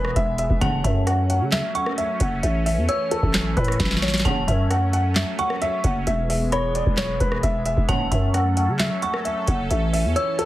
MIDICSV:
0, 0, Header, 1, 8, 480
1, 0, Start_track
1, 0, Key_signature, 3, "minor"
1, 0, Tempo, 454545
1, 648, Time_signature, 4, 2, 24, 8
1, 11037, End_track
2, 0, Start_track
2, 0, Title_t, "Synth bell"
2, 0, Program_c, 0, 98
2, 0, Note_on_c, 0, 83, 75
2, 606, Note_off_c, 0, 83, 0
2, 649, Note_on_c, 0, 81, 104
2, 1100, Note_off_c, 0, 81, 0
2, 1848, Note_on_c, 0, 85, 75
2, 2076, Note_off_c, 0, 85, 0
2, 3048, Note_on_c, 0, 88, 86
2, 4446, Note_off_c, 0, 88, 0
2, 4488, Note_on_c, 0, 81, 111
2, 4940, Note_off_c, 0, 81, 0
2, 5690, Note_on_c, 0, 85, 77
2, 5917, Note_off_c, 0, 85, 0
2, 6888, Note_on_c, 0, 83, 77
2, 8286, Note_off_c, 0, 83, 0
2, 8328, Note_on_c, 0, 81, 105
2, 8779, Note_off_c, 0, 81, 0
2, 9531, Note_on_c, 0, 85, 75
2, 9758, Note_off_c, 0, 85, 0
2, 10729, Note_on_c, 0, 88, 87
2, 11037, Note_off_c, 0, 88, 0
2, 11037, End_track
3, 0, Start_track
3, 0, Title_t, "Grand piano"
3, 0, Program_c, 1, 0
3, 0, Note_on_c, 1, 71, 86
3, 156, Note_off_c, 1, 71, 0
3, 170, Note_on_c, 1, 76, 97
3, 393, Note_off_c, 1, 76, 0
3, 409, Note_on_c, 1, 76, 87
3, 636, Note_off_c, 1, 76, 0
3, 647, Note_on_c, 1, 78, 98
3, 875, Note_off_c, 1, 78, 0
3, 890, Note_on_c, 1, 76, 78
3, 1116, Note_off_c, 1, 76, 0
3, 1128, Note_on_c, 1, 78, 85
3, 1355, Note_off_c, 1, 78, 0
3, 1370, Note_on_c, 1, 78, 83
3, 1596, Note_off_c, 1, 78, 0
3, 1607, Note_on_c, 1, 76, 94
3, 1835, Note_off_c, 1, 76, 0
3, 1848, Note_on_c, 1, 78, 84
3, 2075, Note_off_c, 1, 78, 0
3, 2088, Note_on_c, 1, 76, 83
3, 2315, Note_off_c, 1, 76, 0
3, 2329, Note_on_c, 1, 78, 76
3, 2556, Note_off_c, 1, 78, 0
3, 2569, Note_on_c, 1, 76, 77
3, 2793, Note_off_c, 1, 76, 0
3, 2809, Note_on_c, 1, 76, 82
3, 3035, Note_off_c, 1, 76, 0
3, 3048, Note_on_c, 1, 73, 88
3, 3275, Note_off_c, 1, 73, 0
3, 3288, Note_on_c, 1, 69, 87
3, 3740, Note_off_c, 1, 69, 0
3, 3767, Note_on_c, 1, 71, 85
3, 4219, Note_off_c, 1, 71, 0
3, 4248, Note_on_c, 1, 73, 77
3, 4475, Note_off_c, 1, 73, 0
3, 4487, Note_on_c, 1, 78, 78
3, 4715, Note_off_c, 1, 78, 0
3, 4727, Note_on_c, 1, 76, 88
3, 4955, Note_off_c, 1, 76, 0
3, 4968, Note_on_c, 1, 78, 88
3, 5194, Note_off_c, 1, 78, 0
3, 5209, Note_on_c, 1, 78, 83
3, 5436, Note_off_c, 1, 78, 0
3, 5449, Note_on_c, 1, 76, 76
3, 5676, Note_off_c, 1, 76, 0
3, 5690, Note_on_c, 1, 78, 95
3, 5916, Note_off_c, 1, 78, 0
3, 5932, Note_on_c, 1, 76, 104
3, 6157, Note_off_c, 1, 76, 0
3, 6169, Note_on_c, 1, 78, 81
3, 6396, Note_off_c, 1, 78, 0
3, 6410, Note_on_c, 1, 76, 85
3, 6634, Note_off_c, 1, 76, 0
3, 6649, Note_on_c, 1, 76, 82
3, 6876, Note_off_c, 1, 76, 0
3, 6892, Note_on_c, 1, 73, 97
3, 7117, Note_off_c, 1, 73, 0
3, 7131, Note_on_c, 1, 74, 80
3, 7357, Note_off_c, 1, 74, 0
3, 7368, Note_on_c, 1, 73, 98
3, 7595, Note_off_c, 1, 73, 0
3, 7609, Note_on_c, 1, 71, 84
3, 7836, Note_off_c, 1, 71, 0
3, 7850, Note_on_c, 1, 76, 97
3, 8072, Note_off_c, 1, 76, 0
3, 8087, Note_on_c, 1, 76, 88
3, 8315, Note_off_c, 1, 76, 0
3, 8328, Note_on_c, 1, 78, 97
3, 8555, Note_off_c, 1, 78, 0
3, 8570, Note_on_c, 1, 76, 78
3, 8796, Note_off_c, 1, 76, 0
3, 8808, Note_on_c, 1, 78, 86
3, 9035, Note_off_c, 1, 78, 0
3, 9050, Note_on_c, 1, 78, 83
3, 9276, Note_off_c, 1, 78, 0
3, 9288, Note_on_c, 1, 76, 96
3, 9515, Note_off_c, 1, 76, 0
3, 9529, Note_on_c, 1, 78, 81
3, 9756, Note_off_c, 1, 78, 0
3, 9769, Note_on_c, 1, 76, 83
3, 9996, Note_off_c, 1, 76, 0
3, 10010, Note_on_c, 1, 78, 76
3, 10236, Note_off_c, 1, 78, 0
3, 10250, Note_on_c, 1, 76, 77
3, 10473, Note_off_c, 1, 76, 0
3, 10489, Note_on_c, 1, 76, 83
3, 10716, Note_off_c, 1, 76, 0
3, 10726, Note_on_c, 1, 73, 89
3, 10954, Note_off_c, 1, 73, 0
3, 10968, Note_on_c, 1, 69, 87
3, 11037, Note_off_c, 1, 69, 0
3, 11037, End_track
4, 0, Start_track
4, 0, Title_t, "Analog synth pad"
4, 0, Program_c, 2, 89
4, 0, Note_on_c, 2, 52, 82
4, 0, Note_on_c, 2, 56, 77
4, 0, Note_on_c, 2, 59, 78
4, 629, Note_off_c, 2, 52, 0
4, 629, Note_off_c, 2, 56, 0
4, 629, Note_off_c, 2, 59, 0
4, 650, Note_on_c, 2, 57, 78
4, 651, Note_on_c, 2, 54, 84
4, 651, Note_on_c, 2, 61, 79
4, 2550, Note_off_c, 2, 54, 0
4, 2570, Note_on_c, 2, 52, 84
4, 4451, Note_off_c, 2, 57, 0
4, 4451, Note_off_c, 2, 61, 0
4, 4470, Note_off_c, 2, 52, 0
4, 4489, Note_on_c, 2, 54, 82
4, 4489, Note_on_c, 2, 57, 80
4, 4489, Note_on_c, 2, 61, 77
4, 6389, Note_off_c, 2, 57, 0
4, 6390, Note_off_c, 2, 54, 0
4, 6390, Note_off_c, 2, 61, 0
4, 6408, Note_on_c, 2, 52, 85
4, 6408, Note_on_c, 2, 56, 76
4, 6408, Note_on_c, 2, 59, 79
4, 8309, Note_off_c, 2, 52, 0
4, 8309, Note_off_c, 2, 56, 0
4, 8309, Note_off_c, 2, 59, 0
4, 8329, Note_on_c, 2, 54, 85
4, 8329, Note_on_c, 2, 61, 77
4, 8330, Note_on_c, 2, 57, 76
4, 8330, Note_on_c, 2, 69, 92
4, 10230, Note_off_c, 2, 54, 0
4, 10249, Note_on_c, 2, 52, 82
4, 11037, Note_off_c, 2, 52, 0
4, 11037, Note_off_c, 2, 57, 0
4, 11037, Note_off_c, 2, 61, 0
4, 11037, Note_off_c, 2, 69, 0
4, 11037, End_track
5, 0, Start_track
5, 0, Title_t, "String section"
5, 0, Program_c, 3, 48
5, 649, Note_on_c, 3, 33, 100
5, 649, Note_on_c, 3, 44, 97
5, 649, Note_on_c, 3, 49, 107
5, 853, Note_off_c, 3, 33, 0
5, 853, Note_off_c, 3, 44, 0
5, 853, Note_off_c, 3, 49, 0
5, 4488, Note_on_c, 3, 33, 100
5, 4489, Note_on_c, 3, 44, 96
5, 4489, Note_on_c, 3, 49, 121
5, 4692, Note_off_c, 3, 33, 0
5, 4693, Note_off_c, 3, 44, 0
5, 4693, Note_off_c, 3, 49, 0
5, 8328, Note_on_c, 3, 33, 102
5, 8328, Note_on_c, 3, 44, 104
5, 8328, Note_on_c, 3, 49, 104
5, 8532, Note_off_c, 3, 33, 0
5, 8532, Note_off_c, 3, 44, 0
5, 8532, Note_off_c, 3, 49, 0
5, 11037, End_track
6, 0, Start_track
6, 0, Title_t, "808-style bass"
6, 0, Program_c, 4, 38
6, 0, Note_on_c, 4, 28, 104
6, 159, Note_off_c, 4, 28, 0
6, 169, Note_on_c, 4, 28, 113
6, 515, Note_off_c, 4, 28, 0
6, 528, Note_on_c, 4, 28, 101
6, 643, Note_off_c, 4, 28, 0
6, 649, Note_on_c, 4, 30, 113
6, 879, Note_off_c, 4, 30, 0
6, 888, Note_on_c, 4, 42, 112
6, 1489, Note_on_c, 4, 49, 99
6, 1505, Note_off_c, 4, 42, 0
6, 1717, Note_off_c, 4, 49, 0
6, 2328, Note_on_c, 4, 30, 104
6, 2559, Note_off_c, 4, 30, 0
6, 2568, Note_on_c, 4, 33, 107
6, 2928, Note_on_c, 4, 40, 100
6, 2944, Note_off_c, 4, 33, 0
6, 3042, Note_off_c, 4, 40, 0
6, 3409, Note_on_c, 4, 33, 107
6, 3754, Note_off_c, 4, 33, 0
6, 3768, Note_on_c, 4, 45, 109
6, 3999, Note_off_c, 4, 45, 0
6, 4009, Note_on_c, 4, 33, 106
6, 4470, Note_off_c, 4, 33, 0
6, 4489, Note_on_c, 4, 30, 112
6, 4719, Note_off_c, 4, 30, 0
6, 4729, Note_on_c, 4, 42, 108
6, 5535, Note_off_c, 4, 42, 0
6, 6169, Note_on_c, 4, 30, 104
6, 6399, Note_off_c, 4, 30, 0
6, 6408, Note_on_c, 4, 28, 110
6, 7215, Note_off_c, 4, 28, 0
6, 7249, Note_on_c, 4, 28, 105
6, 7594, Note_off_c, 4, 28, 0
6, 7608, Note_on_c, 4, 28, 110
6, 7839, Note_off_c, 4, 28, 0
6, 7848, Note_on_c, 4, 28, 110
6, 8194, Note_off_c, 4, 28, 0
6, 8207, Note_on_c, 4, 28, 103
6, 8323, Note_off_c, 4, 28, 0
6, 8328, Note_on_c, 4, 30, 117
6, 8559, Note_off_c, 4, 30, 0
6, 8568, Note_on_c, 4, 42, 109
6, 9169, Note_on_c, 4, 49, 101
6, 9185, Note_off_c, 4, 42, 0
6, 9397, Note_off_c, 4, 49, 0
6, 10009, Note_on_c, 4, 30, 108
6, 10239, Note_off_c, 4, 30, 0
6, 10249, Note_on_c, 4, 33, 110
6, 10610, Note_on_c, 4, 40, 97
6, 10626, Note_off_c, 4, 33, 0
6, 10723, Note_off_c, 4, 40, 0
6, 11037, End_track
7, 0, Start_track
7, 0, Title_t, "Downlifter"
7, 0, Program_c, 5, 103
7, 0, Note_on_c, 5, 60, 87
7, 649, Note_off_c, 5, 60, 0
7, 11037, End_track
8, 0, Start_track
8, 0, Title_t, "Drums"
8, 48, Note_on_c, 9, 37, 106
8, 154, Note_off_c, 9, 37, 0
8, 170, Note_on_c, 9, 36, 94
8, 170, Note_on_c, 9, 42, 77
8, 275, Note_off_c, 9, 36, 0
8, 276, Note_off_c, 9, 42, 0
8, 405, Note_on_c, 9, 42, 83
8, 510, Note_off_c, 9, 42, 0
8, 528, Note_on_c, 9, 36, 100
8, 633, Note_off_c, 9, 36, 0
8, 649, Note_on_c, 9, 36, 112
8, 649, Note_on_c, 9, 42, 85
8, 754, Note_off_c, 9, 36, 0
8, 754, Note_off_c, 9, 42, 0
8, 889, Note_on_c, 9, 36, 93
8, 892, Note_on_c, 9, 42, 90
8, 994, Note_off_c, 9, 36, 0
8, 998, Note_off_c, 9, 42, 0
8, 1129, Note_on_c, 9, 42, 74
8, 1130, Note_on_c, 9, 37, 69
8, 1234, Note_off_c, 9, 42, 0
8, 1236, Note_off_c, 9, 37, 0
8, 1370, Note_on_c, 9, 42, 79
8, 1476, Note_off_c, 9, 42, 0
8, 1605, Note_on_c, 9, 39, 89
8, 1608, Note_on_c, 9, 38, 110
8, 1610, Note_on_c, 9, 42, 88
8, 1710, Note_off_c, 9, 39, 0
8, 1713, Note_off_c, 9, 38, 0
8, 1715, Note_off_c, 9, 42, 0
8, 1848, Note_on_c, 9, 42, 70
8, 1954, Note_off_c, 9, 42, 0
8, 1968, Note_on_c, 9, 37, 101
8, 2073, Note_off_c, 9, 37, 0
8, 2090, Note_on_c, 9, 42, 77
8, 2195, Note_off_c, 9, 42, 0
8, 2324, Note_on_c, 9, 42, 87
8, 2328, Note_on_c, 9, 36, 96
8, 2430, Note_off_c, 9, 42, 0
8, 2434, Note_off_c, 9, 36, 0
8, 2569, Note_on_c, 9, 42, 84
8, 2674, Note_off_c, 9, 42, 0
8, 2811, Note_on_c, 9, 46, 89
8, 2917, Note_off_c, 9, 46, 0
8, 3048, Note_on_c, 9, 42, 78
8, 3153, Note_off_c, 9, 42, 0
8, 3288, Note_on_c, 9, 42, 80
8, 3394, Note_off_c, 9, 42, 0
8, 3409, Note_on_c, 9, 36, 90
8, 3514, Note_off_c, 9, 36, 0
8, 3524, Note_on_c, 9, 39, 86
8, 3527, Note_on_c, 9, 38, 111
8, 3529, Note_on_c, 9, 42, 89
8, 3629, Note_off_c, 9, 39, 0
8, 3632, Note_off_c, 9, 38, 0
8, 3635, Note_off_c, 9, 42, 0
8, 3768, Note_on_c, 9, 36, 98
8, 3768, Note_on_c, 9, 42, 43
8, 3849, Note_off_c, 9, 42, 0
8, 3849, Note_on_c, 9, 42, 58
8, 3874, Note_off_c, 9, 36, 0
8, 3888, Note_on_c, 9, 37, 106
8, 3929, Note_off_c, 9, 42, 0
8, 3929, Note_on_c, 9, 42, 72
8, 3994, Note_off_c, 9, 37, 0
8, 4009, Note_on_c, 9, 36, 95
8, 4009, Note_on_c, 9, 38, 61
8, 4011, Note_off_c, 9, 42, 0
8, 4011, Note_on_c, 9, 42, 78
8, 4069, Note_off_c, 9, 38, 0
8, 4069, Note_on_c, 9, 38, 59
8, 4115, Note_off_c, 9, 36, 0
8, 4116, Note_off_c, 9, 42, 0
8, 4128, Note_off_c, 9, 38, 0
8, 4128, Note_on_c, 9, 38, 80
8, 4189, Note_off_c, 9, 38, 0
8, 4189, Note_on_c, 9, 38, 72
8, 4249, Note_off_c, 9, 38, 0
8, 4249, Note_on_c, 9, 38, 91
8, 4249, Note_on_c, 9, 42, 53
8, 4308, Note_off_c, 9, 38, 0
8, 4308, Note_on_c, 9, 38, 86
8, 4329, Note_off_c, 9, 42, 0
8, 4329, Note_on_c, 9, 42, 73
8, 4369, Note_off_c, 9, 38, 0
8, 4369, Note_on_c, 9, 38, 107
8, 4410, Note_off_c, 9, 42, 0
8, 4410, Note_on_c, 9, 42, 86
8, 4429, Note_off_c, 9, 38, 0
8, 4429, Note_on_c, 9, 38, 100
8, 4489, Note_off_c, 9, 42, 0
8, 4489, Note_on_c, 9, 36, 115
8, 4489, Note_on_c, 9, 42, 81
8, 4535, Note_off_c, 9, 38, 0
8, 4594, Note_off_c, 9, 36, 0
8, 4595, Note_off_c, 9, 42, 0
8, 4729, Note_on_c, 9, 36, 90
8, 4732, Note_on_c, 9, 42, 85
8, 4834, Note_off_c, 9, 36, 0
8, 4838, Note_off_c, 9, 42, 0
8, 4969, Note_on_c, 9, 42, 76
8, 4970, Note_on_c, 9, 37, 72
8, 5075, Note_off_c, 9, 42, 0
8, 5076, Note_off_c, 9, 37, 0
8, 5209, Note_on_c, 9, 42, 79
8, 5315, Note_off_c, 9, 42, 0
8, 5445, Note_on_c, 9, 39, 84
8, 5448, Note_on_c, 9, 38, 109
8, 5450, Note_on_c, 9, 42, 89
8, 5550, Note_off_c, 9, 39, 0
8, 5553, Note_off_c, 9, 38, 0
8, 5556, Note_off_c, 9, 42, 0
8, 5688, Note_on_c, 9, 42, 68
8, 5794, Note_off_c, 9, 42, 0
8, 5809, Note_on_c, 9, 37, 107
8, 5915, Note_off_c, 9, 37, 0
8, 5931, Note_on_c, 9, 42, 78
8, 6037, Note_off_c, 9, 42, 0
8, 6165, Note_on_c, 9, 42, 85
8, 6169, Note_on_c, 9, 36, 94
8, 6271, Note_off_c, 9, 42, 0
8, 6275, Note_off_c, 9, 36, 0
8, 6409, Note_on_c, 9, 42, 82
8, 6514, Note_off_c, 9, 42, 0
8, 6651, Note_on_c, 9, 46, 88
8, 6757, Note_off_c, 9, 46, 0
8, 6888, Note_on_c, 9, 42, 76
8, 6889, Note_on_c, 9, 37, 71
8, 6994, Note_off_c, 9, 42, 0
8, 6995, Note_off_c, 9, 37, 0
8, 7128, Note_on_c, 9, 42, 80
8, 7234, Note_off_c, 9, 42, 0
8, 7249, Note_on_c, 9, 36, 95
8, 7354, Note_off_c, 9, 36, 0
8, 7363, Note_on_c, 9, 39, 90
8, 7366, Note_on_c, 9, 38, 106
8, 7368, Note_on_c, 9, 42, 92
8, 7468, Note_off_c, 9, 39, 0
8, 7472, Note_off_c, 9, 38, 0
8, 7474, Note_off_c, 9, 42, 0
8, 7607, Note_on_c, 9, 42, 69
8, 7608, Note_on_c, 9, 36, 97
8, 7713, Note_off_c, 9, 36, 0
8, 7713, Note_off_c, 9, 42, 0
8, 7727, Note_on_c, 9, 37, 103
8, 7833, Note_off_c, 9, 37, 0
8, 7849, Note_on_c, 9, 36, 93
8, 7849, Note_on_c, 9, 42, 78
8, 7954, Note_off_c, 9, 36, 0
8, 7954, Note_off_c, 9, 42, 0
8, 8084, Note_on_c, 9, 42, 82
8, 8189, Note_off_c, 9, 42, 0
8, 8207, Note_on_c, 9, 36, 101
8, 8313, Note_off_c, 9, 36, 0
8, 8328, Note_on_c, 9, 36, 116
8, 8328, Note_on_c, 9, 42, 83
8, 8434, Note_off_c, 9, 36, 0
8, 8434, Note_off_c, 9, 42, 0
8, 8568, Note_on_c, 9, 36, 92
8, 8571, Note_on_c, 9, 42, 86
8, 8674, Note_off_c, 9, 36, 0
8, 8676, Note_off_c, 9, 42, 0
8, 8808, Note_on_c, 9, 42, 77
8, 8809, Note_on_c, 9, 37, 71
8, 8914, Note_off_c, 9, 42, 0
8, 8915, Note_off_c, 9, 37, 0
8, 9049, Note_on_c, 9, 42, 78
8, 9154, Note_off_c, 9, 42, 0
8, 9284, Note_on_c, 9, 39, 90
8, 9288, Note_on_c, 9, 38, 109
8, 9290, Note_on_c, 9, 42, 88
8, 9390, Note_off_c, 9, 39, 0
8, 9393, Note_off_c, 9, 38, 0
8, 9395, Note_off_c, 9, 42, 0
8, 9528, Note_on_c, 9, 42, 68
8, 9634, Note_off_c, 9, 42, 0
8, 9648, Note_on_c, 9, 37, 103
8, 9754, Note_off_c, 9, 37, 0
8, 9770, Note_on_c, 9, 42, 77
8, 9876, Note_off_c, 9, 42, 0
8, 10005, Note_on_c, 9, 42, 86
8, 10009, Note_on_c, 9, 36, 95
8, 10111, Note_off_c, 9, 42, 0
8, 10115, Note_off_c, 9, 36, 0
8, 10249, Note_on_c, 9, 42, 84
8, 10355, Note_off_c, 9, 42, 0
8, 10492, Note_on_c, 9, 46, 88
8, 10598, Note_off_c, 9, 46, 0
8, 10729, Note_on_c, 9, 42, 79
8, 10835, Note_off_c, 9, 42, 0
8, 10970, Note_on_c, 9, 42, 77
8, 11037, Note_off_c, 9, 42, 0
8, 11037, End_track
0, 0, End_of_file